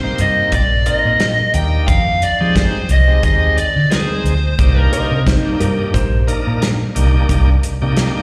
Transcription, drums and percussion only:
0.18 closed hi-hat
0.52 kick, closed hi-hat
0.86 closed hi-hat
1.20 snare, closed hi-hat
1.54 closed hi-hat
1.88 kick, closed hi-hat
2.22 closed hi-hat
2.56 kick, snare, closed hi-hat
2.89 closed hi-hat
3.23 kick, closed hi-hat
3.58 closed hi-hat
3.91 snare, closed hi-hat
4.26 closed hi-hat
4.59 kick, closed hi-hat
4.93 closed hi-hat
5.27 kick, snare, closed hi-hat
5.61 closed hi-hat
5.94 kick, closed hi-hat
6.28 closed hi-hat
6.62 snare, closed hi-hat
6.96 closed hi-hat
7.29 kick, closed hi-hat
7.63 closed hi-hat
7.97 snare, closed hi-hat

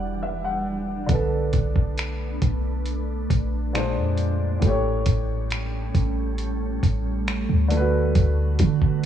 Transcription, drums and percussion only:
1.09 kick, closed hi-hat
1.53 kick, closed hi-hat
1.76 kick
1.97 finger snap, closed hi-hat
2.42 kick, closed hi-hat
2.85 closed hi-hat
3.30 kick, closed hi-hat
3.75 finger snap, closed hi-hat
4.18 closed hi-hat
4.62 kick, closed hi-hat
5.06 kick, closed hi-hat
5.51 finger snap, closed hi-hat
5.95 kick, closed hi-hat
6.38 closed hi-hat
6.83 kick, closed hi-hat
7.28 finger snap, closed hi-hat
7.71 closed hi-hat
8.15 kick, closed hi-hat
8.59 kick, closed hi-hat
8.82 kick

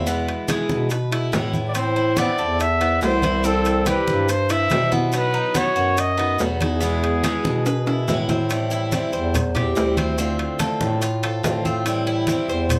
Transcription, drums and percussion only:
0.07 maracas
0.27 high conga, high timbale
0.48 high conga, high timbale, low timbale, maracas
0.69 high conga, maracas
0.90 high conga, high timbale, maracas
1.12 high conga, high timbale
1.33 high conga, high timbale, low timbale, maracas
1.53 high conga, maracas
1.75 high conga, high timbale, maracas
1.96 high conga
2.17 high conga, high timbale, low timbale, maracas
2.38 high conga, maracas
2.60 high conga, high timbale, maracas
2.81 high conga, high timbale
3.02 high conga, low timbale, maracas
3.22 high conga, high timbale, maracas
3.44 high conga, maracas
3.65 high conga, high timbale, maracas
3.86 high conga, high timbale, low timbale, maracas
4.07 high conga, maracas
4.29 high conga, high timbale, maracas
4.49 high conga, high timbale, maracas
4.70 high conga, high timbale, low timbale, maracas
4.92 high conga, maracas
5.12 high conga, high timbale, maracas
5.34 high conga
5.55 high conga, high timbale, low timbale, maracas
5.76 high conga, maracas
5.97 high conga, high timbale, maracas
6.19 high conga, high timbale
6.39 high conga, low timbale, maracas
6.61 high conga, high timbale, maracas
6.81 high conga, maracas
7.03 high conga, high timbale
7.24 high conga, high timbale, low timbale, maracas
7.45 high conga, maracas
7.66 high timbale, maracas
7.87 high conga, high timbale
8.08 high conga, low timbale, maracas
8.29 high conga, low timbale, maracas
8.50 high conga, high timbale, maracas
8.71 high conga, maracas
8.92 high conga, high timbale, low timbale, maracas
9.13 high conga, maracas
9.34 high conga, low conga, high timbale, maracas
9.56 high conga, low conga, high timbale
9.76 high conga, low timbale, maracas
9.97 high conga, high timbale, maracas
10.18 high conga, maracas
10.39 high conga, high timbale
10.59 high conga, high timbale, low timbale, maracas
10.81 high conga, maracas
11.02 high conga, high timbale, maracas
11.24 high conga, high timbale
11.44 high conga, high timbale, low timbale, maracas
11.65 high conga, maracas
11.86 high conga, high timbale, maracas
12.07 high conga
12.27 high conga, high timbale, low timbale, maracas
12.48 high conga, maracas
12.69 high conga, low conga, high timbale, maracas

